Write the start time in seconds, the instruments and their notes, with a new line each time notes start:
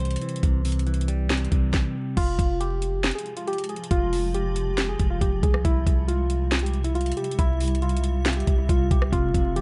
Already playing: 808-style bass C2, clean electric guitar C3 E3 G3
0.00 clean electric guitar C5
0.05 closed hi-hat
0.11 closed hi-hat
0.16 closed hi-hat
0.21 clean electric guitar E3, closed hi-hat
0.29 closed hi-hat
0.36 closed hi-hat
0.43 808-style bass C2, clean electric guitar C3, kick, closed hi-hat
0.65 clean electric guitar C3, closed hi-hat, open hi-hat
0.72 closed hi-hat
0.79 closed hi-hat
0.87 clean electric guitar E3, closed hi-hat
0.94 closed hi-hat
1.01 closed hi-hat
1.08 clean electric guitar G3, closed hi-hat
1.30 clean electric guitar C3, snare, closed hi-hat
1.37 closed hi-hat
1.45 closed hi-hat
1.52 808-style bass C2, clean electric guitar C3, kick, closed hi-hat
1.74 kick, snare
2.17 808-style bass F1, ambient pad C3 F3 G#3 F4, synth keys F4, kick, closed hi-hat, crash
2.39 808-style bass F1, kick, closed hi-hat
2.60 synth keys G4, closed hi-hat
2.82 closed hi-hat
3.04 snare, closed hi-hat
3.11 synth keys G#4, closed hi-hat
3.18 closed hi-hat
3.26 closed hi-hat
3.37 synth keys F4, closed hi-hat
3.47 synth keys G4, closed hi-hat
3.53 closed hi-hat
3.58 closed hi-hat
3.64 closed hi-hat
3.69 synth keys G#4, closed hi-hat
3.76 closed hi-hat
3.84 closed hi-hat
3.91 808-style bass F1, synth keys F4, kick, closed hi-hat
4.13 open hi-hat
4.34 synth keys G4, closed hi-hat
4.56 closed hi-hat
4.78 snare, closed hi-hat
4.89 synth keys G#4
4.99 808-style bass F1, kick, closed hi-hat
5.10 synth keys F4
5.21 808-style bass F1, synth keys G4, kick, closed hi-hat
5.43 808-style bass C2, synth keys G#4, kick, closed hi-hat
5.54 cross-stick
5.65 808-style bass C2, ambient pad G3 E5, synth keys E4, kick, closed hi-hat
5.87 808-style bass C2, kick, closed hi-hat
6.08 synth keys F4, closed hi-hat
6.30 closed hi-hat
6.52 snare, closed hi-hat
6.59 synth keys G4, closed hi-hat
6.66 closed hi-hat
6.73 closed hi-hat
6.84 synth keys E4, closed hi-hat
6.95 synth keys F4, closed hi-hat
7.01 closed hi-hat
7.06 closed hi-hat
7.12 closed hi-hat
7.17 synth keys G4, closed hi-hat
7.24 closed hi-hat
7.31 closed hi-hat
7.39 808-style bass C2, synth keys E4, kick, closed hi-hat
7.60 closed hi-hat, open hi-hat
7.68 closed hi-hat
7.75 closed hi-hat
7.82 synth keys F4, closed hi-hat
7.89 closed hi-hat
7.97 closed hi-hat
8.04 closed hi-hat
8.26 snare, closed hi-hat
8.33 synth keys G4, closed hi-hat
8.40 closed hi-hat
8.47 808-style bass C2, kick, closed hi-hat
8.58 synth keys E4
8.69 808-style bass C2, synth keys F4, kick, closed hi-hat
8.91 808-style bass C2, synth keys G4, kick, closed hi-hat
9.02 cross-stick
9.12 808-style bass F1, clean electric guitar C3, ambient pad F3 G#3 F4, synth keys F4, kick, closed hi-hat
9.34 808-style bass F1, clean electric guitar C3, kick, closed hi-hat
9.56 clean electric guitar F3, synth keys G4, closed hi-hat